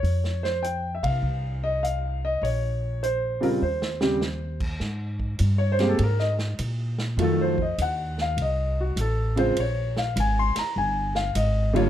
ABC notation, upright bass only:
X:1
M:4/4
L:1/8
Q:"Swing" 1/4=101
K:Ebmix
V:1 name="Upright bass" clef=bass
F,,3 C, C,,4 | B,,,4 E,,4 | [K:Ab] A,,2 G,,2 A,,2 B,,2 | F,,2 E,,2 C,,2 =A,,,2 |
B,,,2 A,,, z G,,,2 A,,,2 |]